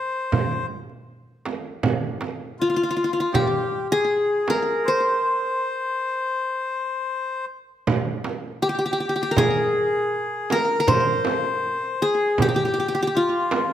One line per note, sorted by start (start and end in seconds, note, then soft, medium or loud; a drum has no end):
0.00 0.66 C5 medium
0.00 0.67 C5 medium
0.32 frame drum medium
0.32 darbuka dum medium
0.52 darbuka ka soft
0.90 darbuka ka soft
1.45 darbuka tek medium
1.45 frame drum medium
1.83 frame drum medium
1.83 darbuka dum medium
2.21 darbuka tek medium
2.21 frame drum medium
2.59 3.13 F4 medium
2.59 2.69 F4 medium
2.70 2.76 F4 soft
2.76 2.83 F4 medium
2.76 darbuka ka soft
2.83 2.90 F4 soft
2.91 2.96 F4 medium
2.97 3.04 F4 soft
3.04 3.13 F4 soft
3.13 3.20 F4 soft
3.13 3.35 F4 medium
3.20 4.55 F4 medium
3.32 3.40 G4 medium
3.32 3.98 G4 medium
3.32 frame drum medium
3.32 darbuka dum medium
3.40 3.48 F4 medium
3.47 3.88 G4 medium
3.53 darbuka ka soft
3.91 4.89 G#4 medium
3.91 5.13 G#4 medium
3.91 darbuka ka soft
4.48 5.63 A#4 medium
4.48 darbuka tek medium
4.48 frame drum medium
4.85 7.45 C5 medium
4.85 7.47 C5 medium
7.87 frame drum medium
7.87 darbuka dum medium
8.24 darbuka tek medium
8.24 frame drum medium
8.62 8.69 G4 medium
8.62 9.17 G4 medium
8.69 8.78 G4 medium
8.79 8.85 G4 medium
8.86 8.92 G4 medium
8.93 9.00 G4 medium
9.00 9.09 G4 soft
9.09 9.15 G4 medium
9.16 9.22 G4 soft
9.16 9.39 G4 medium
9.23 9.44 G4 medium
9.31 10.44 A#4 medium
9.37 10.54 G#4 medium
9.37 10.59 G#4 medium
9.37 frame drum medium
9.37 darbuka dum medium
9.56 darbuka ka soft
10.50 10.80 A#4 medium
10.50 10.91 A#4 medium
10.50 darbuka tek medium
10.50 frame drum medium
10.80 11.93 A#4 medium
10.87 12.05 C5 loud
10.87 12.05 C5 medium
10.87 frame drum medium
10.87 darbuka dum medium
11.25 darbuka tek medium
11.25 frame drum medium
12.02 12.41 G#4 medium
12.02 12.48 G#4 medium
12.38 13.17 G4 medium
12.38 12.48 G4 medium
12.38 frame drum medium
12.38 darbuka dum medium
12.49 12.56 G4 medium
12.56 12.65 G4 medium
12.56 darbuka ka soft
12.65 12.73 G4 soft
12.74 12.79 G4 medium
12.80 12.88 G4 medium
12.88 12.94 G4 medium
12.95 13.02 G4 medium
13.03 13.07 G4 medium
13.07 13.73 G4 medium
13.15 13.73 F4 medium
13.51 darbuka tek medium
13.51 frame drum medium